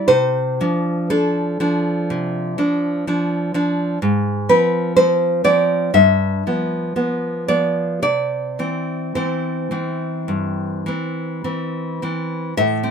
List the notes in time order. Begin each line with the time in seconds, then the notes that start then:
0.08 C3 C5
0.61 F3 D4
1.10 F3 D4 A4
1.60 F3 D4
2.10 C3
2.58 F3 D4
3.07 F3 D4
3.54 F3 D4
4.02 G#2
4.49 F3 C4 B4
4.96 F3 C4 C5
5.44 F3 C4 D5
5.94 G2 E5
6.47 F3 B3
6.96 F3 B3
7.48 F3 B3 D5
8.02 C3 D5
8.59 E3 C4
9.15 E3 C4 C5
9.71 E3 C4
10.28 G2
10.86 E3 C4
11.44 E3 C4
12.02 E3 C4
12.57 A2 E5
12.83 C4